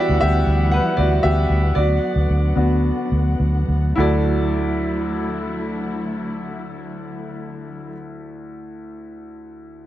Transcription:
Already playing: string section E3 G3 B3 F#5, grand piano G3 E4 F#4 G4 D5 E5
0.09 fingered electric bass D2
0.21 fingered electric bass D2, grand piano G4 E5
0.47 fingered electric bass D2
0.71 grand piano B4 F#5
0.97 fingered electric bass D2, grand piano F#4 D5
1.23 fingered electric bass D2, grand piano G4 E5
1.50 fingered electric bass D2
1.75 fingered electric bass D2, string section D3 F#3, grand piano F#4 D5
2.16 fingered electric bass D2
2.30 fingered electric bass D2
2.56 fingered electric bass D2, grand piano B3 D4 F#4
3.12 fingered electric bass D2
3.40 fingered electric bass D2
3.68 fingered electric bass D2
3.95 fingered electric bass D2, grand piano D2 E4 F#4 A4, string section D3 A3 E4
4.00 grand piano D5

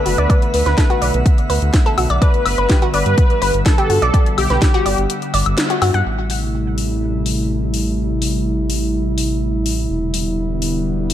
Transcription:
Already playing: analog synth pad D3 A3 B3 F#5, analog synth lead B4, synth texture E5 E6
0.06 analog synth bass F#1, synth pluck F#4, open hi-hat
0.18 analog synth bass D2, synth pluck D5, closed hi-hat
0.30 synth pluck D5, kick, closed hi-hat
0.42 closed hi-hat
0.54 analog synth bass D2, analog synth lead B4, open hi-hat
0.66 analog synth bass D2, synth pluck B4, snare, closed hi-hat
0.78 synth pluck A4, kick, snare, closed hi-hat
0.90 synth pluck F#4, closed hi-hat
1.02 analog synth bass B1, synth pluck D5, open hi-hat
1.14 analog synth bass B1, closed hi-hat
1.26 kick, closed hi-hat
1.38 closed hi-hat
1.50 analog synth bass D2, synth pluck B4, open hi-hat
1.62 analog synth bass D2, closed hi-hat
1.74 kick, snare, closed hi-hat
1.86 synth pluck A4, closed hi-hat
1.98 analog synth bass B1, synth pluck F#4, open hi-hat, high woodblock
2.10 analog synth bass B1, synth pluck D5, closed hi-hat
2.22 analog synth pad D3 G3, analog synth lead B4, synth pluck D5, kick, closed hi-hat
2.34 closed hi-hat
2.46 analog synth bass G1, open hi-hat, high woodblock
2.58 analog synth bass G1, synth pluck B4, closed hi-hat
2.69 synth pluck G4, kick, snare, closed hi-hat
2.82 synth pluck F#4, closed hi-hat
2.94 analog synth bass G1, analog synth lead B4, synth pluck D5, open hi-hat
3.06 analog synth bass G2, closed hi-hat
3.18 kick, closed hi-hat
3.30 closed hi-hat
3.42 analog synth bass G1, synth pluck B4, open hi-hat
3.54 analog synth bass G1, closed hi-hat
3.66 analog synth lead A4, kick, snare, closed hi-hat
3.78 synth pluck G4, closed hi-hat
3.90 analog synth bass G2, synth pluck F#4, open hi-hat
4.02 analog synth bass B1, synth pluck D5, closed hi-hat
4.14 synth pluck D5, kick, closed hi-hat
4.26 closed hi-hat
4.38 analog synth bass B1, analog synth lead G4, open hi-hat, high woodblock
4.50 analog synth bass B1, synth pluck B4, snare, closed hi-hat
4.62 synth pluck G4, kick, snare, closed hi-hat
4.74 synth pluck F#4, closed hi-hat
4.86 analog synth bass G1, synth pluck D5, open hi-hat
4.98 analog synth bass G1, closed hi-hat
5.10 closed hi-hat
5.22 closed hi-hat
5.34 analog synth bass G1, synth pluck D5, open hi-hat
5.46 analog synth bass G1, closed hi-hat, high woodblock
5.58 snare, closed hi-hat
5.70 synth pluck F#4, closed hi-hat
5.82 analog synth bass G2, synth pluck F#4, open hi-hat, high woodblock
5.94 analog synth bass G2, synth pluck F#5, closed hi-hat
6.06 analog synth bass A1, analog synth pad C3 G3 A3 E4
6.30 open hi-hat
6.78 open hi-hat
7.26 open hi-hat
7.74 open hi-hat
8.22 open hi-hat
8.70 open hi-hat
9.18 open hi-hat
9.66 open hi-hat
9.89 analog synth bass E1, analog synth pad D3 G3 B3
10.14 open hi-hat
10.62 open hi-hat
11.10 open hi-hat

